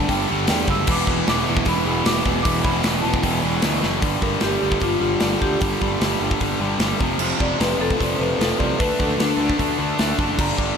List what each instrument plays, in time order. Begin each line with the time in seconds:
Already playing: distorted electric guitar G2 D3 G3
0.09 picked electric bass G1, distorted electric guitar G2 D3 G3, marimba G5, kick, open hi-hat
0.29 picked electric bass G1, distorted electric guitar G2 D3 G3
0.47 picked electric bass E2, distorted electric guitar G2 D3, marimba G5, snare, open hi-hat
0.51 distorted electric guitar G3
0.68 picked electric bass F#1, distorted electric guitar G2 D3 G3, marimba E6, kick
0.87 picked electric bass E1, distorted electric guitar E2 B2 E3, kick, crash
0.91 marimba D6
1.07 picked electric bass E1, distorted electric guitar E2 B2 E3, kick
1.27 picked electric bass E1, distorted electric guitar E2 B2 E3, marimba D6, snare, open hi-hat
1.47 picked electric bass E1, distorted electric guitar E2 B2 E3
1.57 kick
1.65 picked electric bass E1, distorted electric guitar E2 B2 E3, marimba B5, kick, open hi-hat
1.85 picked electric bass E1, distorted electric guitar E2 B2 E3, marimba B5
2.03 picked electric bass E1, distorted electric guitar E2 B2 E3, marimba D6, snare, open hi-hat
2.22 distorted electric guitar E2 B2 E3, kick
2.26 picked electric bass E1, distorted electric guitar B2
2.42 picked electric bass E1, distorted electric guitar E2 B2 E3, marimba D6, kick, open hi-hat
2.47 distorted electric guitar E3
2.63 picked electric bass E1, distorted electric guitar E2 B2 E3, marimba B5, kick
2.84 picked electric bass E1, distorted electric guitar E2 B2 E3, snare, open hi-hat
3.02 picked electric bass E1, distorted electric guitar E2 B2 E3, marimba A5
3.14 kick
3.23 picked electric bass E1, distorted electric guitar E2 B2 E3, marimba G5, kick, open hi-hat
3.43 picked electric bass E1, distorted electric guitar E2 B2 E3
3.62 picked electric bass D2, distorted electric guitar E2 B2 E3, snare, open hi-hat
3.81 picked electric bass F#1, distorted electric guitar E2 B2 E3, snare
4.00 picked electric bass G1, distorted electric guitar G2 D3 G3, kick, open hi-hat
4.22 picked electric bass G1, distorted electric guitar G2 D3 G3, marimba A#4, kick
4.40 picked electric bass G1, distorted electric guitar G2 D3 G3, marimba G4, snare, open hi-hat
4.62 picked electric bass G1, distorted electric guitar G2 D3 G3
4.72 kick
4.80 picked electric bass G1, distorted electric guitar G2 D3 G3, marimba F4, kick, open hi-hat
4.99 picked electric bass G1, distorted electric guitar G2 D3 G3, marimba F4
5.20 picked electric bass G1, distorted electric guitar G2 D3 G3, snare, open hi-hat
5.40 picked electric bass D2, distorted electric guitar G2 D3 G3, marimba G4, kick
5.61 picked electric bass G1, distorted electric guitar G2 D3 G3, kick, open hi-hat
5.81 picked electric bass G1, distorted electric guitar G2 D3 G3, kick
6.00 picked electric bass G1, distorted electric guitar G2 D3 G3, snare, open hi-hat
6.21 picked electric bass G1, distorted electric guitar G2 D3 G3
6.31 kick
6.40 picked electric bass G1, distorted electric guitar G2 D3 G3, kick, open hi-hat
6.60 picked electric bass G1, distorted electric guitar G2 D3 G3
6.79 picked electric bass G1, distorted electric guitar G2 D3 G3, snare, open hi-hat
7.01 picked electric bass F1, distorted electric guitar F2 C3 F3, kick
7.18 picked electric bass F1, distorted electric guitar F2 C3 F3, crash
7.40 picked electric bass F1, distorted electric guitar F2 C3 F3, marimba D5, kick
7.60 picked electric bass F1, distorted electric guitar F2 C3 F3, marimba B4, snare, open hi-hat
7.79 picked electric bass F1, distorted electric guitar F2 C3 F3, marimba A4
7.90 kick
7.95 distorted electric guitar F2
8.00 picked electric bass F1, distorted electric guitar F2 C3 F3, marimba D5, kick, open hi-hat
8.19 picked electric bass F1, distorted electric guitar F2 C3 F3, marimba B4
8.38 picked electric bass F1, distorted electric guitar F2 C3, marimba A4, snare, open hi-hat
8.43 distorted electric guitar F3
8.59 picked electric bass C2, distorted electric guitar F2 C3 F3, marimba D5, kick
8.79 picked electric bass D2, distorted electric guitar D3 A3 D4, marimba B4, kick, open hi-hat
8.99 picked electric bass D2, distorted electric guitar D3 A3 D4, marimba A4, kick
9.17 picked electric bass D2, distorted electric guitar D3 A3, marimba D4, snare, open hi-hat
9.22 distorted electric guitar D4
9.37 picked electric bass D2, distorted electric guitar D3 A3 D4
9.50 kick
9.58 picked electric bass D2, distorted electric guitar D3 A3 D4, kick, open hi-hat
9.79 picked electric bass D2, distorted electric guitar D3 A3 D4
9.99 picked electric bass D2, distorted electric guitar D3 A3 D4, snare, open hi-hat
10.19 picked electric bass F#1, distorted electric guitar D3 A3 D4, kick
10.38 picked electric bass G1, distorted electric guitar G2 D3 G3, marimba A#5, kick, crash
10.58 picked electric bass G1, distorted electric guitar G2 D3 G3, kick